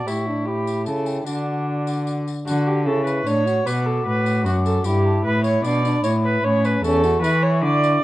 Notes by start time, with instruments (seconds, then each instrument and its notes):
0.07 cello A2, viola E4, trombone G4, flute C#6, tambourine
0.27 trombone D4
0.45 trombone E4, viola G4, flute B5
0.67 tambourine
0.86 cello C#3, viola A4, flute A5, tambourine
1.06 flute G5, tambourine
1.26 cello D3, viola D4, trombone F#4, flute F#5, tambourine
1.87 tambourine
2.07 tambourine
2.28 tambourine
2.46 cello D3, viola F#4, trombone F#4, flute A5, tambourine
2.67 viola G4
2.85 cello C#3, trombone E4, viola A4, flute C#6
3.05 viola B4, tambourine
3.26 cello A2, trombone D4, viola C#5, tambourine
3.46 trombone F#4, tambourine
3.66 cello B2, trombone F#4, viola B4, flute D6, tambourine
3.86 viola A4
4.06 cello A2, viola B4
4.26 tambourine
4.45 cello F#2, viola F#4, flute D6, tambourine
4.65 viola A4, tambourine
4.84 cello G2, trombone E4, viola G4, flute B5, tambourine
5.06 flute A5
5.25 cello A2, viola B4, flute B5
5.44 viola C#5, tambourine
5.64 cello B2, trombone D4, viola D5, tambourine
5.85 trombone D4, tambourine
6.03 cello A2, trombone E4, viola C#5, tambourine
6.24 viola B4
6.43 cello A2, trombone C#4, viola C#5
6.65 viola B4, tambourine
6.83 cello E2, trombone C#4, viola A4, flute C#6, tambourine
7.04 trombone F#4, tambourine
7.22 cello E3, trombone E4, viola B4, tambourine
7.43 viola C#5
7.62 cello D3, viola D5
7.83 tambourine